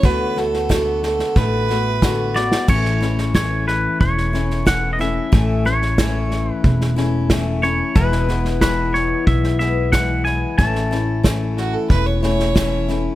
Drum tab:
CC |----------------|x---------------|----------------|----------------|
HH |----p-------p---|----p-------p---|----p-------p---|----p-------p---|
SD |o-ooo-ooo-o-o-oo|ooooo-o-ooooo-o-|o-ooo-o-ooo-o-o-|ooooo-o-ooo-o-o-|
BD |o---o---o---o---|o---o---o---o---|o---o---o---o---|o---o---o---o---|

CC |----------------|
HH |----p-------p---|
SD |ooo-o-o-o-ooo-o-|
BD |o---o---o---o---|